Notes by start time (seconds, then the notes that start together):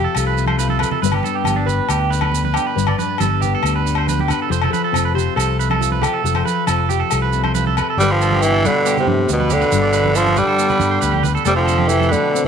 Already playing: F3 C4 F4 G4
0.04 A4
0.15 C2 A4, low agogo, maracas
0.27 B4
0.38 C3, maracas
0.46 C5, high conga, low agogo
0.58 F4 B4, high conga, maracas
0.69 A4, high conga
0.79 A4 B4, low conga, low agogo
0.83 maracas
0.91 A4, low conga
1.02 G1 G2 G3 B3 D4 B4, maracas
1.12 G4, low conga, low agogo
1.23 D4 A4, high conga, maracas
1.35 G4
1.44 G1 G3 B3, high conga, low agogo, maracas
1.56 D4
1.66 B4, low conga, maracas
1.89 D2 G4, muted nylon-string guitar stroke, low agogo, maracas
2.10 D3 B4, maracas
2.21 B4, high conga, low agogo
2.32 B3, high conga, maracas
2.44 B4, high conga
2.54 D4 G4, low agogo, maracas
2.67 B4
2.75 G1 G2 B4, maracas
2.87 D5, low conga, low agogo
2.98 D4 B4, high conga, maracas
3.18 G1 G3 B3 A4, high conga, low agogo, maracas
3.41 G4 B4, low conga, maracas
3.55 A4
3.63 D2 D4, low agogo, maracas
3.76 B4
3.84 D3, maracas
3.95 C5, low agogo
4.06 B3 B4, high conga, maracas
4.19 G4, high conga
4.28 D4 B4, low conga, low agogo, maracas
4.42 A4
4.49 F1 F3 A4 C5, maracas
4.62 A4, low conga, low agogo
4.71 A4 B4, high conga, maracas
4.84 A4
4.92 F1 C4 F4, high conga, low agogo
4.96 maracas
5.05 B4
5.14 G4 C5, low conga
5.19 maracas
5.36 C2 A4, low agogo
5.40 maracas
5.58 C3 B4, maracas
5.70 A4, high conga, low agogo
5.81 F4, high conga, maracas
5.91 B4, high conga
6.02 G4 A4, low conga, low agogo, maracas
6.14 A4
6.24 F1 F3 A4, maracas
6.35 C5, low conga, low agogo
6.45 A4 B4, high conga, maracas
6.67 F1 C4 F4 A4, high conga, low agogo, maracas
6.89 G4, low conga, maracas
7.00 A4
7.11 C2 A4, low agogo, maracas
7.22 B4
7.33 C3, maracas
7.44 C5, high conga, low agogo
7.55 F4 B4, high conga, maracas
7.67 A4, high conga
7.77 A4 B4, low conga, low agogo, maracas
7.90 A4
7.97 G1 G2 D3 G3 B3 B4, maracas
8.01 D4 B4
8.11 D3 F3 G4
8.21 A4 B4, maracas
8.32 G4, high conga
8.43 B2 E3 D4, maracas
8.54 A4
8.64 B2 D3 G3 B4, high conga, low conga, maracas
8.86 B3 G4, maracas
8.97 A2 C3, low conga, maracas
9.07 G2 D4, high conga
9.28 D2 D3, maracas
9.32 G2 B2
9.40 B4, high conga
9.50 D3 G4, low conga, maracas
9.55 B2
9.61 B4, maracas
9.71 G1 G2 D4, maracas
9.82 D5
9.93 B4, maracas
10.05 high conga
10.13 F3 D4 A4, maracas
10.20 D3
10.26 high conga, maracas
10.35 G3 B4, high conga, low conga, maracas
10.41 D3
10.48 A4
10.59 B3, maracas
10.70 B4, low conga, maracas
10.80 G2, high conga, maracas
10.91 C5
11.01 D2 D3 B4, maracas
11.11 G4, high conga
11.23 B4, low conga, maracas
11.35 A4, maracas
11.45 F1 C3 G3 A3 C4 A4, maracas
11.56 D3 F3 G4
11.67 A4, maracas
11.77 G4, high conga
11.88 E3 A4, maracas
11.92 C3
11.99 A4, high conga, maracas
12.09 B2 D3 A3 B4, high conga, low conga, maracas
12.31 C4, muted clean electric guitar stroke
12.36 maracas
12.44 low conga